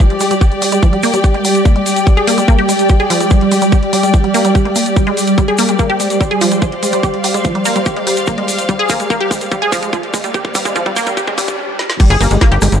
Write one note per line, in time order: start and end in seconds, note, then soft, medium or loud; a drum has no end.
0.00 11.59 G3 medium
0.00 5.40 G4 medium
0.00 11.59 G4 medium
0.00 11.59 D5 medium
0.00 6.75 G5 medium
0.10 closed hi-hat soft
0.20 0.25 G#3 medium
0.20 open hi-hat medium
0.20 shaker medium
0.30 0.36 G3 medium
0.30 closed hi-hat medium
0.30 shaker medium
0.41 0.44 G4 medium
0.41 kick loud
0.41 closed hi-hat medium
0.41 shaker soft
0.52 closed hi-hat soft
0.62 0.69 G3 medium
0.62 open hi-hat loud
0.62 shaker medium
0.72 0.77 G#3 medium
0.72 closed hi-hat medium
0.72 shaker medium
0.83 0.87 F3 medium
0.83 kick loud
0.83 closed hi-hat medium
0.83 shaker soft
0.93 0.98 G3 medium
0.93 closed hi-hat soft
1.03 1.08 A#3 loud
1.03 open hi-hat loud
1.03 shaker medium
1.13 1.16 G3 medium
1.13 closed hi-hat medium
1.13 shaker medium
1.24 1.27 G4 medium
1.24 kick loud
1.24 closed hi-hat medium
1.24 shaker soft
1.34 1.41 G#3 medium
1.34 closed hi-hat soft
1.45 1.52 G3 medium
1.45 open hi-hat loud
1.45 shaker medium
1.55 closed hi-hat medium
1.55 shaker medium
1.65 1.70 A#3 medium
1.65 kick loud
1.65 closed hi-hat soft
1.65 shaker soft
1.76 1.80 G#3 medium
1.76 closed hi-hat soft
1.86 open hi-hat medium
1.86 shaker medium
1.96 closed hi-hat medium
1.96 shaker medium
2.07 2.11 G3 medium
2.07 kick loud
2.07 closed hi-hat soft
2.07 shaker soft
2.17 2.24 G#4 loud
2.17 closed hi-hat soft
2.27 2.34 A#3 loud
2.27 open hi-hat loud
2.27 shaker loud
2.38 2.42 G#3 medium
2.38 closed hi-hat medium
2.38 shaker medium
2.48 2.53 A#3 loud
2.48 kick loud
2.48 closed hi-hat medium
2.48 shaker soft
2.58 2.63 G4 loud
2.58 closed hi-hat soft
2.69 2.73 G#3 medium
2.69 open hi-hat loud
2.69 shaker loud
2.79 closed hi-hat medium
2.79 shaker medium
2.89 2.94 G3 medium
2.89 kick loud
2.89 closed hi-hat medium
2.89 shaker soft
3.00 3.07 G#4 loud
3.00 closed hi-hat soft
3.10 3.13 F3 medium
3.10 open hi-hat loud
3.10 shaker medium
3.21 3.25 G#3 medium
3.21 closed hi-hat medium
3.21 shaker medium
3.30 3.36 F3 medium
3.30 kick loud
3.30 closed hi-hat medium
3.30 shaker soft
3.41 closed hi-hat soft
3.51 3.56 G#3 medium
3.51 open hi-hat loud
3.51 shaker loud
3.61 3.67 G3 medium
3.61 closed hi-hat medium
3.61 shaker medium
3.72 3.75 G4 medium
3.72 kick loud
3.72 closed hi-hat soft
3.72 shaker soft
3.83 closed hi-hat soft
3.93 4.00 G3 medium
3.93 open hi-hat loud
3.93 shaker medium
4.03 4.08 G#3 medium
4.03 closed hi-hat medium
4.03 shaker medium
4.14 4.18 F3 medium
4.14 kick loud
4.14 closed hi-hat soft
4.14 shaker soft
4.24 4.29 G3 medium
4.24 closed hi-hat soft
4.34 4.39 A#3 loud
4.34 open hi-hat loud
4.34 shaker loud
4.44 4.48 G3 medium
4.44 closed hi-hat medium
4.44 shaker soft
4.55 4.58 G4 medium
4.55 kick loud
4.55 closed hi-hat soft
4.55 shaker soft
4.65 4.72 G#3 medium
4.65 closed hi-hat soft
4.76 4.83 A#3 medium
4.76 open hi-hat loud
4.76 shaker loud
4.86 closed hi-hat medium
4.86 shaker medium
4.96 5.01 G3 medium
4.96 kick loud
4.96 closed hi-hat medium
4.96 shaker soft
5.07 5.11 G#3 loud
5.07 closed hi-hat soft
5.17 open hi-hat medium
5.17 shaker medium
5.27 closed hi-hat medium
5.27 shaker medium
5.38 5.42 G3 medium
5.38 11.61 C5 medium
5.38 kick loud
5.38 closed hi-hat soft
5.38 riser medium
5.38 shaker soft
5.48 5.55 G#4 loud
5.48 closed hi-hat soft
5.58 5.65 A#3 loud
5.58 open hi-hat loud
5.58 shaker loud
5.68 5.74 G#3 medium
5.68 closed hi-hat medium
5.68 shaker soft
5.79 5.84 A#3 loud
5.79 kick loud
5.79 closed hi-hat soft
5.79 shaker soft
5.90 5.94 G4 loud
5.90 closed hi-hat soft
6.00 6.05 G#3 medium
6.00 open hi-hat medium
6.00 shaker medium
6.10 closed hi-hat medium
6.10 shaker medium
6.21 6.25 G3 medium
6.21 kick loud
6.21 closed hi-hat soft
6.21 shaker soft
6.31 6.38 G#4 loud
6.31 closed hi-hat soft
6.41 6.44 F3 loud
6.41 open hi-hat loud
6.41 shaker medium
6.51 6.56 G#3 medium
6.51 closed hi-hat medium
6.51 shaker soft
6.62 6.67 F3 medium
6.62 11.59 F5 medium
6.62 kick loud
6.62 closed hi-hat medium
6.62 shaker soft
6.72 closed hi-hat soft
6.83 6.87 G#3 medium
6.83 open hi-hat loud
6.83 shaker medium
6.92 6.98 G3 medium
6.92 closed hi-hat medium
6.92 shaker medium
7.03 7.06 G4 medium
7.03 kick loud
7.03 closed hi-hat medium
7.03 shaker soft
7.14 closed hi-hat soft
7.24 7.31 G3 medium
7.24 open hi-hat loud
7.24 shaker medium
7.34 7.39 G#3 medium
7.34 closed hi-hat medium
7.34 shaker medium
7.44 7.49 F3 medium
7.44 kick loud
7.44 closed hi-hat medium
7.44 shaker soft
7.55 7.60 G3 medium
7.55 closed hi-hat soft
7.65 7.70 A#3 loud
7.65 open hi-hat medium
7.65 shaker medium
7.75 7.79 G3 medium
7.75 closed hi-hat medium
7.75 shaker medium
7.85 7.89 G4 medium
7.85 kick loud
7.85 closed hi-hat medium
7.85 shaker soft
7.96 8.03 G#3 medium
7.96 closed hi-hat soft
8.07 8.14 G3 medium
8.07 open hi-hat loud
8.07 shaker medium
8.16 closed hi-hat medium
8.16 shaker medium
8.27 8.32 A#3 medium
8.27 kick loud
8.27 closed hi-hat medium
8.27 shaker soft
8.38 8.42 G#3 medium
8.38 closed hi-hat soft
8.48 open hi-hat medium
8.48 shaker medium
8.59 closed hi-hat medium
8.59 shaker medium
8.69 8.74 G3 medium
8.69 kick loud
8.69 closed hi-hat medium
8.69 shaker soft
8.79 8.86 G#4 loud
8.79 closed hi-hat soft
8.89 8.97 A#3 loud
8.89 kick loud
8.89 open hi-hat loud
8.89 shaker medium
9.00 9.05 G#3 medium
9.00 closed hi-hat medium
9.00 shaker medium
9.10 9.15 A#3 loud
9.10 kick loud
9.10 closed hi-hat medium
9.10 shaker soft
9.21 9.25 G4 loud
9.21 closed hi-hat soft
9.31 9.36 G#3 medium
9.31 kick loud
9.31 open hi-hat medium
9.31 shaker medium
9.41 closed hi-hat medium
9.41 shaker soft
9.51 9.56 G3 medium
9.51 kick loud
9.51 closed hi-hat medium
9.51 shaker soft
9.62 9.69 G#4 loud
9.62 closed hi-hat soft
9.72 9.75 F3 loud
9.72 kick loud
9.72 open hi-hat loud
9.72 shaker loud
9.83 9.87 G#3 medium
9.83 closed hi-hat medium
9.83 shaker medium
9.93 9.98 F3 medium
9.93 kick loud
9.93 closed hi-hat medium
9.93 shaker soft
10.03 closed hi-hat soft
10.14 10.18 G#3 medium
10.14 kick loud
10.14 open hi-hat medium
10.14 shaker medium
10.24 10.29 G3 medium
10.24 closed hi-hat medium
10.24 shaker soft
10.34 10.37 G4 medium
10.34 kick loud
10.34 closed hi-hat medium
10.34 shaker soft
10.45 kick medium
10.45 closed hi-hat soft
10.55 10.62 G3 medium
10.55 kick loud
10.55 open hi-hat loud
10.55 shaker medium
10.65 10.70 G#3 medium
10.65 kick medium
10.65 closed hi-hat medium
10.65 shaker medium
10.76 10.80 F3 medium
10.76 kick loud
10.76 closed hi-hat medium
10.76 shaker soft
10.86 10.91 G3 medium
10.86 kick medium
10.86 closed hi-hat soft
10.96 11.01 A#3 loud
10.96 kick loud
10.96 open hi-hat medium
10.96 shaker medium
11.06 11.10 G3 medium
11.06 kick medium
11.06 closed hi-hat medium
11.06 shaker soft
11.17 11.20 G4 medium
11.17 kick loud
11.17 closed hi-hat medium
11.17 swell medium
11.17 shaker soft
11.27 11.34 G#3 medium
11.27 kick medium
11.27 closed hi-hat soft
11.38 11.45 G3 medium
11.38 kick loud
11.38 open hi-hat loud
11.38 shaker medium
11.48 kick loud
11.48 closed hi-hat medium
11.48 shaker medium
11.79 snare medium
11.90 snare medium
12.00 12.80 G3 medium
12.00 12.05 G3 medium
12.00 12.80 G4 medium
12.00 kick loud
12.00 cross-stick soft
12.00 closed hi-hat medium
12.00 crash loud
12.00 shaker soft
12.10 12.17 G1 medium
12.10 12.17 G#4 loud
12.10 closed hi-hat medium
12.21 12.28 G1 loud
12.21 12.28 A#3 loud
12.21 open hi-hat loud
12.21 shaker medium
12.30 12.38 G1 medium
12.30 12.36 G#3 medium
12.30 closed hi-hat medium
12.30 shaker soft
12.41 12.46 A#3 loud
12.41 kick loud
12.41 snare loud
12.41 closed hi-hat medium
12.41 shaker soft
12.52 12.59 G1 medium
12.52 12.56 G4 loud
12.52 closed hi-hat medium
12.62 12.69 G1 loud
12.62 12.67 G#3 medium
12.62 cross-stick medium
12.62 open hi-hat medium
12.62 shaker loud
12.72 12.79 G1 medium
12.72 closed hi-hat medium
12.72 shaker soft